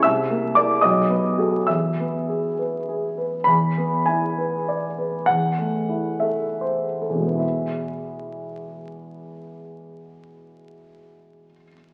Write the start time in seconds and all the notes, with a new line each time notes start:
0.03 C2 E5 E6
0.30 A#3
0.55 E4 A#4 D5 D6
0.81 B1 D#5 D#6
1.09 B3
1.38 F#4 A4
1.67 E2 E5 E6
2.00 B3
2.29 G#4
2.59 B4
2.88 G#4
3.18 B4
3.44 E2 B5
3.78 B3
4.06 E4 G#5
4.38 B4
4.68 D5
4.98 B4
5.26 E2 F#5
5.58 A3
5.89 E4
6.20 A4 E5
6.61 C5
7.02 A4
7.09 E2
7.15 B2
7.20 G#3
7.26 B3
7.31 E4
7.36 G#4 E5